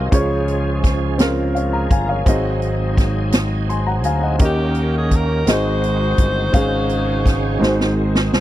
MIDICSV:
0, 0, Header, 1, 6, 480
1, 0, Start_track
1, 0, Key_signature, -5, "major"
1, 0, Tempo, 712589
1, 84, Time_signature, 6, 3, 24, 8
1, 5660, End_track
2, 0, Start_track
2, 0, Title_t, "Grand piano"
2, 0, Program_c, 0, 0
2, 0, Control_c, 0, 64, 127
2, 0, Note_on_c, 0, 60, 70
2, 0, Note_on_c, 0, 63, 67
2, 0, Note_on_c, 0, 66, 63
2, 0, Note_on_c, 0, 68, 65
2, 0, Note_on_c, 0, 70, 76
2, 0, Note_on_c, 0, 77, 58
2, 0, Note_on_c, 0, 80, 60
2, 0, Note_on_c, 0, 84, 56
2, 68, Note_off_c, 0, 77, 0
2, 75, Note_on_c, 0, 72, 70
2, 79, Note_on_c, 0, 61, 71
2, 84, Note_on_c, 0, 65, 71
2, 87, Note_on_c, 0, 49, 60
2, 92, Note_off_c, 0, 68, 0
2, 92, Note_off_c, 0, 84, 0
2, 92, Note_on_c, 0, 68, 73
2, 93, Control_c, 0, 64, 0
2, 94, Note_off_c, 0, 63, 0
2, 94, Note_off_c, 0, 80, 0
2, 95, Note_off_c, 0, 66, 0
2, 95, Note_off_c, 0, 70, 0
2, 95, Note_on_c, 0, 73, 81
2, 96, Note_off_c, 0, 60, 0
2, 226, Control_c, 0, 64, 127
2, 614, Note_off_c, 0, 72, 0
2, 616, Note_off_c, 0, 61, 0
2, 619, Note_off_c, 0, 65, 0
2, 623, Note_off_c, 0, 68, 0
2, 624, Note_off_c, 0, 73, 0
2, 779, Note_off_c, 0, 49, 0
2, 794, Note_on_c, 0, 60, 65
2, 799, Note_on_c, 0, 61, 61
2, 806, Note_on_c, 0, 65, 63
2, 808, Note_on_c, 0, 68, 57
2, 815, Note_on_c, 0, 70, 77
2, 1043, Note_on_c, 0, 77, 52
2, 1051, Note_on_c, 0, 73, 44
2, 1157, Note_off_c, 0, 77, 0
2, 1161, Note_off_c, 0, 73, 0
2, 1166, Note_on_c, 0, 82, 58
2, 1279, Note_off_c, 0, 82, 0
2, 1287, Note_on_c, 0, 80, 65
2, 1290, Note_on_c, 0, 77, 50
2, 1334, Note_off_c, 0, 60, 0
2, 1337, Note_off_c, 0, 61, 0
2, 1340, Note_off_c, 0, 65, 0
2, 1341, Note_off_c, 0, 68, 0
2, 1344, Note_off_c, 0, 70, 0
2, 1398, Note_off_c, 0, 77, 0
2, 1400, Note_off_c, 0, 80, 0
2, 1408, Note_on_c, 0, 77, 57
2, 1412, Note_on_c, 0, 73, 47
2, 1520, Note_on_c, 0, 60, 83
2, 1525, Note_on_c, 0, 63, 69
2, 1530, Note_on_c, 0, 66, 68
2, 1531, Note_on_c, 0, 44, 64
2, 1533, Control_c, 0, 64, 0
2, 1535, Note_on_c, 0, 68, 71
2, 1542, Note_on_c, 0, 75, 86
2, 1634, Note_off_c, 0, 77, 0
2, 1636, Note_off_c, 0, 73, 0
2, 1661, Control_c, 0, 64, 127
2, 2057, Note_off_c, 0, 60, 0
2, 2059, Note_off_c, 0, 63, 0
2, 2062, Note_off_c, 0, 66, 0
2, 2065, Note_off_c, 0, 68, 0
2, 2068, Note_off_c, 0, 75, 0
2, 2221, Note_off_c, 0, 44, 0
2, 2488, Note_on_c, 0, 84, 58
2, 2494, Note_on_c, 0, 80, 47
2, 2600, Note_off_c, 0, 84, 0
2, 2603, Note_off_c, 0, 80, 0
2, 2604, Note_on_c, 0, 82, 58
2, 2610, Note_on_c, 0, 78, 49
2, 2718, Note_off_c, 0, 82, 0
2, 2721, Note_off_c, 0, 78, 0
2, 2729, Note_on_c, 0, 80, 65
2, 2731, Note_on_c, 0, 77, 58
2, 2840, Note_off_c, 0, 80, 0
2, 2842, Note_off_c, 0, 77, 0
2, 2849, Note_on_c, 0, 78, 54
2, 2851, Note_on_c, 0, 75, 49
2, 2954, Note_on_c, 0, 61, 70
2, 2958, Note_on_c, 0, 63, 62
2, 2964, Note_on_c, 0, 67, 61
2, 2965, Note_on_c, 0, 51, 53
2, 2966, Note_off_c, 0, 75, 0
2, 2971, Note_on_c, 0, 70, 61
2, 2972, Control_c, 0, 64, 0
2, 2976, Note_on_c, 0, 75, 70
2, 3075, Note_off_c, 0, 78, 0
2, 3100, Control_c, 0, 64, 127
2, 3494, Note_off_c, 0, 61, 0
2, 3496, Note_off_c, 0, 63, 0
2, 3499, Note_off_c, 0, 67, 0
2, 3503, Note_off_c, 0, 70, 0
2, 3505, Note_off_c, 0, 75, 0
2, 3658, Note_off_c, 0, 51, 0
2, 3677, Note_on_c, 0, 60, 55
2, 3683, Note_on_c, 0, 63, 59
2, 3688, Note_on_c, 0, 66, 52
2, 3690, Note_on_c, 0, 56, 61
2, 3691, Control_c, 0, 64, 0
2, 3693, Note_on_c, 0, 68, 56
2, 3699, Note_on_c, 0, 75, 64
2, 3800, Control_c, 0, 64, 127
2, 4216, Note_off_c, 0, 60, 0
2, 4219, Note_off_c, 0, 63, 0
2, 4221, Note_off_c, 0, 66, 0
2, 4224, Note_off_c, 0, 68, 0
2, 4227, Note_off_c, 0, 75, 0
2, 4381, Note_off_c, 0, 56, 0
2, 4396, Note_on_c, 0, 61, 81
2, 4407, Note_on_c, 0, 77, 77
2, 4408, Note_on_c, 0, 44, 64
2, 4414, Control_c, 0, 64, 0
2, 4421, Note_on_c, 0, 68, 89
2, 4542, Control_c, 0, 64, 127
2, 4936, Note_off_c, 0, 61, 0
2, 4941, Note_off_c, 0, 77, 0
2, 4948, Note_off_c, 0, 68, 0
2, 5100, Note_off_c, 0, 44, 0
2, 5111, Note_on_c, 0, 56, 69
2, 5117, Note_on_c, 0, 60, 64
2, 5123, Note_on_c, 0, 44, 65
2, 5123, Note_on_c, 0, 63, 65
2, 5130, Note_on_c, 0, 66, 60
2, 5134, Control_c, 0, 64, 0
2, 5134, Note_on_c, 0, 72, 78
2, 5266, Control_c, 0, 64, 127
2, 5654, Note_off_c, 0, 56, 0
2, 5657, Note_off_c, 0, 60, 0
2, 5660, Note_off_c, 0, 44, 0
2, 5660, Note_off_c, 0, 63, 0
2, 5660, Note_off_c, 0, 66, 0
2, 5660, Note_off_c, 0, 72, 0
2, 5660, End_track
3, 0, Start_track
3, 0, Title_t, "Saxophone section"
3, 0, Program_c, 1, 65
3, 2981, Note_on_c, 1, 58, 62
3, 2983, Note_on_c, 1, 61, 61
3, 2994, Note_on_c, 1, 67, 84
3, 3315, Note_off_c, 1, 67, 0
3, 3345, Note_on_c, 1, 68, 75
3, 3454, Note_off_c, 1, 68, 0
3, 3471, Note_on_c, 1, 70, 84
3, 3666, Note_off_c, 1, 58, 0
3, 3667, Note_off_c, 1, 61, 0
3, 3698, Note_off_c, 1, 70, 0
3, 3705, Note_on_c, 1, 63, 74
3, 3708, Note_on_c, 1, 66, 69
3, 3709, Note_on_c, 1, 72, 99
3, 5350, Note_off_c, 1, 63, 0
3, 5351, Note_off_c, 1, 66, 0
3, 5378, Note_off_c, 1, 72, 0
3, 5660, End_track
4, 0, Start_track
4, 0, Title_t, "Tonewheel organ"
4, 0, Program_c, 2, 16
4, 80, Note_on_c, 2, 68, 75
4, 81, Note_on_c, 2, 53, 61
4, 83, Note_on_c, 2, 49, 66
4, 83, Note_on_c, 2, 56, 64
4, 788, Note_off_c, 2, 68, 0
4, 1170, Note_on_c, 2, 68, 54
4, 1281, Note_off_c, 2, 68, 0
4, 1291, Note_on_c, 2, 70, 55
4, 1402, Note_off_c, 2, 70, 0
4, 1407, Note_on_c, 2, 68, 58
4, 1496, Note_off_c, 2, 49, 0
4, 1496, Note_off_c, 2, 53, 0
4, 1496, Note_off_c, 2, 56, 0
4, 1512, Note_off_c, 2, 68, 0
4, 1520, Note_on_c, 2, 68, 73
4, 1523, Note_on_c, 2, 63, 59
4, 1526, Note_on_c, 2, 54, 66
4, 1526, Note_on_c, 2, 59, 47
4, 1567, Note_on_c, 2, 60, 60
4, 1568, Note_off_c, 2, 59, 0
4, 2935, Note_off_c, 2, 68, 0
4, 2937, Note_off_c, 2, 63, 0
4, 2938, Note_off_c, 2, 54, 0
4, 2959, Note_off_c, 2, 60, 0
4, 2967, Note_on_c, 2, 58, 57
4, 2969, Note_on_c, 2, 51, 58
4, 2970, Note_on_c, 2, 67, 70
4, 2972, Note_on_c, 2, 61, 57
4, 3683, Note_off_c, 2, 51, 0
4, 3686, Note_off_c, 2, 58, 0
4, 3687, Note_off_c, 2, 67, 0
4, 3688, Note_off_c, 2, 61, 0
4, 3689, Note_on_c, 2, 60, 58
4, 3691, Note_on_c, 2, 56, 54
4, 3692, Note_on_c, 2, 51, 60
4, 3692, Note_on_c, 2, 65, 56
4, 3730, Note_on_c, 2, 66, 63
4, 3732, Note_off_c, 2, 65, 0
4, 4404, Note_off_c, 2, 56, 0
4, 4407, Note_off_c, 2, 60, 0
4, 4408, Note_off_c, 2, 51, 0
4, 4411, Note_on_c, 2, 68, 76
4, 4412, Note_on_c, 2, 56, 60
4, 4412, Note_on_c, 2, 61, 67
4, 4415, Note_on_c, 2, 49, 72
4, 4428, Note_off_c, 2, 66, 0
4, 5126, Note_off_c, 2, 56, 0
4, 5129, Note_off_c, 2, 61, 0
4, 5129, Note_off_c, 2, 68, 0
4, 5130, Note_off_c, 2, 49, 0
4, 5134, Note_on_c, 2, 51, 70
4, 5134, Note_on_c, 2, 56, 60
4, 5134, Note_on_c, 2, 58, 51
4, 5137, Note_on_c, 2, 66, 76
4, 5174, Note_off_c, 2, 58, 0
4, 5179, Note_on_c, 2, 60, 64
4, 5660, Note_off_c, 2, 51, 0
4, 5660, Note_off_c, 2, 56, 0
4, 5660, Note_off_c, 2, 60, 0
4, 5660, Note_off_c, 2, 66, 0
4, 5660, End_track
5, 0, Start_track
5, 0, Title_t, "Fingered electric bass"
5, 0, Program_c, 3, 33
5, 84, Note_on_c, 3, 37, 92
5, 1257, Note_off_c, 3, 37, 0
5, 1284, Note_on_c, 3, 31, 88
5, 1505, Note_off_c, 3, 31, 0
5, 1524, Note_on_c, 3, 32, 88
5, 2723, Note_off_c, 3, 32, 0
5, 2723, Note_on_c, 3, 38, 77
5, 2944, Note_off_c, 3, 38, 0
5, 2963, Note_on_c, 3, 39, 92
5, 3657, Note_off_c, 3, 39, 0
5, 3683, Note_on_c, 3, 32, 93
5, 4137, Note_off_c, 3, 32, 0
5, 4165, Note_on_c, 3, 31, 82
5, 4386, Note_off_c, 3, 31, 0
5, 4403, Note_on_c, 3, 32, 87
5, 5098, Note_off_c, 3, 32, 0
5, 5130, Note_on_c, 3, 32, 85
5, 5582, Note_off_c, 3, 32, 0
5, 5611, Note_on_c, 3, 36, 82
5, 5660, Note_off_c, 3, 36, 0
5, 5660, End_track
6, 0, Start_track
6, 0, Title_t, "Drums"
6, 82, Note_on_c, 9, 36, 98
6, 84, Note_on_c, 9, 42, 84
6, 150, Note_off_c, 9, 36, 0
6, 151, Note_off_c, 9, 42, 0
6, 323, Note_on_c, 9, 42, 43
6, 390, Note_off_c, 9, 42, 0
6, 565, Note_on_c, 9, 36, 78
6, 568, Note_on_c, 9, 42, 55
6, 575, Note_on_c, 9, 38, 30
6, 632, Note_off_c, 9, 36, 0
6, 635, Note_off_c, 9, 42, 0
6, 642, Note_off_c, 9, 38, 0
6, 801, Note_on_c, 9, 42, 87
6, 810, Note_on_c, 9, 38, 97
6, 869, Note_off_c, 9, 42, 0
6, 877, Note_off_c, 9, 38, 0
6, 1052, Note_on_c, 9, 42, 45
6, 1119, Note_off_c, 9, 42, 0
6, 1284, Note_on_c, 9, 36, 85
6, 1284, Note_on_c, 9, 42, 54
6, 1351, Note_off_c, 9, 36, 0
6, 1352, Note_off_c, 9, 42, 0
6, 1524, Note_on_c, 9, 36, 98
6, 1526, Note_on_c, 9, 42, 84
6, 1591, Note_off_c, 9, 36, 0
6, 1593, Note_off_c, 9, 42, 0
6, 1764, Note_on_c, 9, 42, 39
6, 1831, Note_off_c, 9, 42, 0
6, 2004, Note_on_c, 9, 36, 75
6, 2007, Note_on_c, 9, 42, 53
6, 2014, Note_on_c, 9, 38, 31
6, 2071, Note_off_c, 9, 36, 0
6, 2074, Note_off_c, 9, 42, 0
6, 2081, Note_off_c, 9, 38, 0
6, 2239, Note_on_c, 9, 42, 91
6, 2247, Note_on_c, 9, 38, 93
6, 2306, Note_off_c, 9, 42, 0
6, 2315, Note_off_c, 9, 38, 0
6, 2490, Note_on_c, 9, 42, 43
6, 2558, Note_off_c, 9, 42, 0
6, 2718, Note_on_c, 9, 42, 55
6, 2786, Note_off_c, 9, 42, 0
6, 2959, Note_on_c, 9, 42, 82
6, 2963, Note_on_c, 9, 36, 103
6, 3026, Note_off_c, 9, 42, 0
6, 3030, Note_off_c, 9, 36, 0
6, 3197, Note_on_c, 9, 42, 42
6, 3264, Note_off_c, 9, 42, 0
6, 3444, Note_on_c, 9, 36, 67
6, 3444, Note_on_c, 9, 42, 55
6, 3511, Note_off_c, 9, 36, 0
6, 3511, Note_off_c, 9, 42, 0
6, 3685, Note_on_c, 9, 42, 91
6, 3693, Note_on_c, 9, 38, 92
6, 3752, Note_off_c, 9, 42, 0
6, 3761, Note_off_c, 9, 38, 0
6, 3930, Note_on_c, 9, 42, 48
6, 3998, Note_off_c, 9, 42, 0
6, 4163, Note_on_c, 9, 42, 56
6, 4165, Note_on_c, 9, 36, 81
6, 4230, Note_off_c, 9, 42, 0
6, 4232, Note_off_c, 9, 36, 0
6, 4402, Note_on_c, 9, 42, 77
6, 4404, Note_on_c, 9, 36, 105
6, 4469, Note_off_c, 9, 42, 0
6, 4471, Note_off_c, 9, 36, 0
6, 4643, Note_on_c, 9, 42, 44
6, 4711, Note_off_c, 9, 42, 0
6, 4888, Note_on_c, 9, 36, 70
6, 4894, Note_on_c, 9, 42, 56
6, 4901, Note_on_c, 9, 38, 29
6, 4955, Note_off_c, 9, 36, 0
6, 4961, Note_off_c, 9, 42, 0
6, 4968, Note_off_c, 9, 38, 0
6, 5139, Note_on_c, 9, 38, 50
6, 5207, Note_off_c, 9, 38, 0
6, 5258, Note_on_c, 9, 38, 48
6, 5325, Note_off_c, 9, 38, 0
6, 5492, Note_on_c, 9, 38, 68
6, 5559, Note_off_c, 9, 38, 0
6, 5613, Note_on_c, 9, 38, 78
6, 5660, Note_off_c, 9, 38, 0
6, 5660, End_track
0, 0, End_of_file